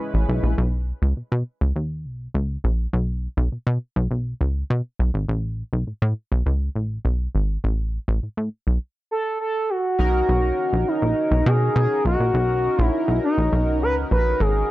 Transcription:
Already playing: analog polysynth G#3 C#4 E4 B4
0.14 analog synth bass A1
0.29 analog synth bass B1
0.43 analog synth bass A#1
0.58 analog synth bass B1
1.02 analog synth bass C#2
1.17 analog synth bass B2
1.32 analog synth bass B2
1.61 analog synth bass C#2
1.76 analog synth bass D#2
2.05 analog synth bass B1
2.34 analog synth bass C#2
2.64 analog synth bass A#1
2.93 analog synth bass B1
3.37 analog synth bass B1
3.52 analog synth bass B2
3.67 analog synth bass B2
3.96 analog synth bass B1
4.11 analog synth bass B1
4.41 analog synth bass C#2
4.70 analog synth bass B2
4.99 analog synth bass B1
5.14 analog synth bass G#1
5.29 analog synth bass A1
5.73 analog synth bass B1
5.87 analog synth bass A2
6.02 analog synth bass A2
6.32 analog synth bass B1
6.46 analog synth bass C#2
6.76 analog synth bass A1
7.05 analog synth bass B1
7.35 analog synth bass G#1
7.64 analog synth bass A1
8.08 analog synth bass A1
8.23 analog synth bass A2
8.37 analog synth bass A2
8.67 analog synth bass B1
9.11 analog synth lead A4
9.40 analog synth lead A4
9.70 analog synth lead F#4
9.99 analog synth bass B1, analog polysynth C#4 D#4 F#4 A#4
10.29 analog synth bass B1
10.73 analog synth bass A#1
10.88 analog synth lead D#4
11.02 analog synth bass A#1
11.31 analog synth bass B1
11.46 analog synth bass B2, analog synth lead G#4
11.76 analog synth bass B2, analog synth lead G#4
12.05 analog synth bass B1, analog synth lead F#4
12.20 analog synth bass A#1
12.34 analog synth bass B1
12.79 analog synth bass A#1
12.84 analog synth lead E4
13.08 analog synth bass B1
13.23 analog synth lead D#4
13.38 analog synth bass A#1
13.53 analog synth bass B1
13.82 analog synth bass C#2, analog synth lead B4
14.11 analog synth bass A#1, analog synth lead B4
14.40 analog synth bass G#1, analog synth lead G#4

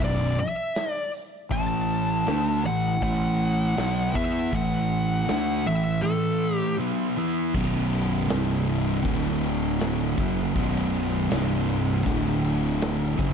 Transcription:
Already playing: distorted electric guitar B1
0.00 fingered electric bass B0, distorted electric guitar F#2 B2, kick, open hi-hat
0.05 lead electric guitar D5
0.38 lead electric guitar E5, open hi-hat
0.75 snare, open hi-hat
0.92 lead electric guitar D5
1.13 open hi-hat
1.50 fingered electric bass A1, distorted electric guitar A2 E3 A3, lead electric guitar A5, kick, open hi-hat
1.90 open hi-hat
2.26 fingered electric bass D2, distorted electric guitar D3 A3 D4, snare, open hi-hat
2.64 fingered electric bass A1, distorted electric guitar A2 E3, lead electric guitar F#5, open hi-hat
3.00 fingered electric bass A1, distorted electric guitar A2 E3 A3, lead electric guitar F#5, kick, open hi-hat
3.40 open hi-hat
3.76 fingered electric bass B1, distorted electric guitar B2 F#3 B3, snare, open hi-hat
4.14 fingered electric bass E2, distorted electric guitar E3 B3 E4, lead electric guitar E5, kick, open hi-hat
4.51 fingered electric bass A1, distorted electric guitar A2 E3 A3, lead electric guitar F#5, kick, open hi-hat
4.90 open hi-hat
5.28 fingered electric bass D2, distorted electric guitar D3 A3 D4, snare, open hi-hat
5.66 fingered electric bass A1, distorted electric guitar A2 E3, lead electric guitar E5, open hi-hat
6.02 distorted electric guitar A2 E3 A3, lead electric guitar A4
6.55 lead electric guitar G4
6.79 distorted electric guitar B2 F#3 B3
7.17 distorted electric guitar E3 B3 E4
7.54 fingered electric bass B0, distorted electric guitar B1 F#2 B2, kick, crash
7.92 crash
8.29 fingered electric bass C1, distorted electric guitar C2 G2 C3, snare, crash
8.67 crash
9.05 fingered electric bass D1, distorted electric guitar D2 A2 D3, kick, crash
9.24 snare
9.43 crash
9.80 snare, crash
10.18 fingered electric bass F#1, distorted electric guitar F#2 C#3 F#3, kick, crash
10.56 fingered electric bass B0, distorted electric guitar B1 F#2 B2, kick, crash
10.94 crash
11.31 fingered electric bass C1, distorted electric guitar C2 G2 C3, snare, crash
11.69 crash
12.06 fingered electric bass D1, distorted electric guitar D2 A2 D3, kick, crash
12.26 snare
12.44 crash
12.81 snare, crash
13.18 fingered electric bass F#1, distorted electric guitar F#2 C#3 F#3, kick, crash

